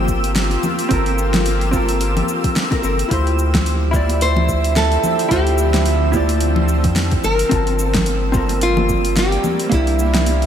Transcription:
Already playing: analog synth bass G1, ambient pad A#3 F4 G4, hollow-body jazz guitar C4 F4 A4 A#4, synth texture E6
0.08 kick, shaker
0.24 open hi-hat, shaker
0.36 snare, open hi-hat, shaker
0.51 open hi-hat
0.63 high conga, low conga, shaker
0.79 open hi-hat, shaker
0.89 analog synth bass G1, hollow-body jazz guitar C4 F4 A4, kick, open hi-hat, shaker
0.94 hollow-body jazz guitar A#4
1.06 open hi-hat
1.18 shaker
1.34 snare, open hi-hat, low conga, shaker
1.46 open hi-hat, shaker
1.61 open hi-hat
1.71 hollow-body jazz guitar C4 F4 A4, kick, muted conga, high conga, shaker
1.76 hollow-body jazz guitar A#4
1.89 open hi-hat, shaker
2.01 open hi-hat, shaker
2.17 open hi-hat, low conga
2.28 shaker
2.44 kick, open hi-hat, low conga, shaker
2.56 snare, open hi-hat, shaker
2.71 hollow-body jazz guitar C4 F4 A4 A#4, kick, open hi-hat
2.82 analog synth bass G1, hollow-body jazz guitar C4 F4 A4 A#4, shaker
2.99 open hi-hat, shaker
3.08 analog synth bass D2, ambient pad D3 F3 C4 E5, hollow-body jazz guitar E4 F4 G4, kick, open hi-hat, shaker
3.13 hollow-body jazz guitar C5
3.27 open hi-hat
3.39 shaker
3.54 kick, snare, open hi-hat, low conga, shaker
3.66 open hi-hat, shaker
3.91 hollow-body jazz guitar E4 F4 G4, kick, muted conga, shaker
3.96 hollow-body jazz guitar D5
4.09 open hi-hat, muted conga, shaker
4.21 nylon-string guitar C5, open hi-hat, shaker
4.36 high conga, low conga
4.49 kick, shaker
4.64 open hi-hat, shaker
4.76 nylon-string guitar A4, snare, open hi-hat, shaker
4.92 open hi-hat
5.04 high conga, low conga, shaker
5.19 open hi-hat, shaker
5.29 analog synth bass D2, hollow-body jazz guitar E4 F4 G4, nylon-string guitar G4, ambient pad A4, kick, open hi-hat, shaker
5.34 hollow-body jazz guitar C5
5.47 open hi-hat
5.58 shaker
5.74 snare, open hi-hat, low conga, shaker
5.86 open hi-hat, shaker
6.12 hollow-body jazz guitar E4 F4 G4, kick, muted conga, high conga, shaker
6.17 hollow-body jazz guitar D5
6.29 open hi-hat, shaker
6.39 nylon-string guitar F4, open hi-hat, shaker
6.56 low conga
6.68 shaker
6.84 analog synth bass F2, kick, open hi-hat, low conga, shaker
6.96 snare, open hi-hat, shaker
7.11 kick, open hi-hat
7.24 analog synth bass G1, ambient pad G3 A#3, nylon-string guitar A#4, shaker
7.39 open hi-hat, shaker
7.49 analog synth bass G1, hollow-body jazz guitar C4 F4 A5, kick, open hi-hat, shaker
7.54 hollow-body jazz guitar A#4
7.67 open hi-hat
7.79 shaker
7.94 kick, snare, open hi-hat, low conga, shaker
8.06 open hi-hat, shaker
8.16 nylon-string guitar A4
8.32 hollow-body jazz guitar C4 F4 A4, kick, muted conga, shaker
8.37 hollow-body jazz guitar A#4
8.49 open hi-hat, muted conga, shaker
8.61 nylon-string guitar F4, open hi-hat, shaker
8.77 high conga, low conga
8.89 kick, shaker
9.05 open hi-hat, shaker
9.17 nylon-string guitar G4, snare, open hi-hat, shaker
9.32 open hi-hat
9.44 high conga, low conga, shaker
9.60 open hi-hat, shaker
9.69 analog synth bass C2, ambient pad C3 E4, hollow-body jazz guitar A#3 D4 E4, kick, open hi-hat, shaker
9.74 nylon-string guitar E4, hollow-body jazz guitar G4
9.87 open hi-hat
9.99 high conga, shaker
10.14 snare, open hi-hat, low conga, shaker
10.26 open hi-hat, shaker
10.42 open hi-hat

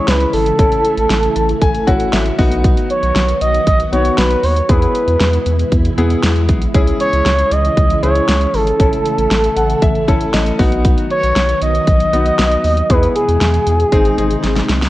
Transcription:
Already playing: string machine C#3 E3 G#3 E4, grand piano C#4 E4 G#4
0.08 analog synth bass C#2, analog synth lead B4, snare, closed hi-hat
0.21 closed hi-hat
0.33 analog synth bass G#1, analog synth lead A4, open hi-hat
0.46 closed hi-hat
0.59 analog synth bass A1, string machine A3, grand piano C#4 E4 A4, kick, closed hi-hat
0.72 closed hi-hat
0.85 closed hi-hat
0.98 analog synth bass A1, closed hi-hat
1.10 analog synth bass A1, snare, closed hi-hat
1.23 closed hi-hat
1.36 analog synth bass A1, grand piano A5, closed hi-hat
1.49 closed hi-hat
1.62 analog synth bass A1, grand piano G#5, kick, closed hi-hat
1.75 closed hi-hat
1.87 analog synth bass A1, grand piano C#4 E4 F#4 F#5, kick, closed hi-hat
2.00 closed hi-hat
2.13 analog synth bass A1, grand piano E5, snare, closed hi-hat
2.26 closed hi-hat
2.39 analog synth bass B1, string machine D#3 F#3 B3 F#4, grand piano B3 D#4 F#4 D#5, kick, open hi-hat
2.52 closed hi-hat
2.64 kick, closed hi-hat
2.77 closed hi-hat
2.90 analog synth lead C#5, closed hi-hat
3.03 analog synth bass B1, closed hi-hat
3.15 analog synth bass B1, snare, closed hi-hat
3.28 closed hi-hat
3.41 analog synth bass B1, analog synth lead D#5, closed hi-hat
3.54 closed hi-hat
3.67 analog synth bass B1, analog synth lead D#5, kick, closed hi-hat
3.80 closed hi-hat
3.92 analog synth bass B1, grand piano B3 D#4 F#4, analog synth lead C#5, closed hi-hat
4.05 closed hi-hat
4.18 analog synth bass B1, analog synth lead B4, snare, closed hi-hat
4.31 closed hi-hat
4.44 analog synth bass D#2, analog synth lead C#5, open hi-hat
4.57 closed hi-hat
4.69 analog synth bass E2, string machine B2 E3 G#3 E4, grand piano B3 E4 G#4, analog synth lead B4, kick, closed hi-hat
4.82 closed hi-hat
4.95 closed hi-hat
5.08 analog synth bass E2, closed hi-hat
5.21 analog synth bass E2, snare, closed hi-hat
5.33 closed hi-hat
5.46 analog synth bass E2, closed hi-hat
5.59 closed hi-hat
5.72 analog synth bass E2, kick, closed hi-hat
5.85 closed hi-hat
5.98 analog synth bass E2, grand piano B3 E4 G#4, closed hi-hat
6.10 closed hi-hat
6.23 analog synth bass E2, snare, closed hi-hat
6.36 closed hi-hat
6.49 analog synth bass B1, kick, closed hi-hat
6.62 closed hi-hat
6.74 analog synth bass C#2, string machine C#3 E4, grand piano C#4 E4 G#4, kick, closed hi-hat
6.87 closed hi-hat
7.00 analog synth lead C#5, closed hi-hat
7.13 analog synth bass C#2, closed hi-hat
7.26 analog synth bass C#2, snare, closed hi-hat
7.39 closed hi-hat
7.51 analog synth bass C#2, analog synth lead D#5, closed hi-hat
7.65 closed hi-hat
7.77 analog synth bass C#2, kick, closed hi-hat
7.90 closed hi-hat
8.03 analog synth bass C#2, grand piano C#4 E4 G#4, analog synth lead C#5, closed hi-hat
8.15 closed hi-hat
8.28 analog synth bass C#2, snare, closed hi-hat
8.41 closed hi-hat
8.54 analog synth bass G#1, analog synth lead A4, open hi-hat
8.67 closed hi-hat
8.80 analog synth bass A1, string machine E3 A3 E4, grand piano C#4 E4 A4, kick, closed hi-hat
8.93 closed hi-hat
9.05 closed hi-hat
9.18 analog synth bass A1, closed hi-hat
9.31 analog synth bass A1, snare, closed hi-hat
9.44 closed hi-hat
9.56 analog synth bass A1, grand piano F#5, closed hi-hat
9.70 closed hi-hat
9.82 analog synth bass A1, grand piano E5, kick, closed hi-hat
9.95 closed hi-hat
10.08 analog synth bass A1, grand piano C#4 E4 A4, kick, closed hi-hat
10.21 closed hi-hat
10.33 analog synth bass A1, grand piano D#5, snare, closed hi-hat
10.46 closed hi-hat
10.59 analog synth bass B1, string machine D#3 F#3 B3 F#4, grand piano B3 D#4 F#4, kick, open hi-hat
10.72 closed hi-hat
10.85 kick, closed hi-hat
10.98 closed hi-hat
11.10 analog synth lead C#5, closed hi-hat
11.23 analog synth bass B1, closed hi-hat
11.36 analog synth bass B1, snare, closed hi-hat
11.49 closed hi-hat
11.62 analog synth bass B1, analog synth lead D#5, closed hi-hat
11.75 closed hi-hat
11.87 analog synth bass B1, kick, closed hi-hat
12.00 closed hi-hat
12.13 analog synth bass B1, grand piano B3 D#4 F#4, closed hi-hat
12.26 closed hi-hat
12.39 analog synth bass B1, snare, closed hi-hat
12.51 closed hi-hat
12.64 analog synth bass D#2, open hi-hat
12.77 closed hi-hat
12.90 analog synth bass E2, string machine B2 E3 G#3 E4, grand piano B3 E4 G#4, analog synth lead B4, kick, closed hi-hat
13.03 closed hi-hat
13.16 analog synth lead G#4, closed hi-hat
13.28 analog synth bass E2, closed hi-hat
13.41 analog synth bass E2, snare, closed hi-hat
13.54 closed hi-hat
13.67 analog synth bass E2, closed hi-hat
13.80 closed hi-hat
13.92 analog synth bass G#1, string machine C3 D#3 G#3 D#4, grand piano C4 D#4 G#4, kick, closed hi-hat
14.05 closed hi-hat
14.18 analog synth bass G#1, grand piano C4 D#4 G#4, closed hi-hat
14.31 closed hi-hat
14.44 analog synth bass G#1, snare, closed hi-hat
14.56 snare, closed hi-hat
14.69 analog synth bass C2, snare, closed hi-hat
14.82 snare, closed hi-hat

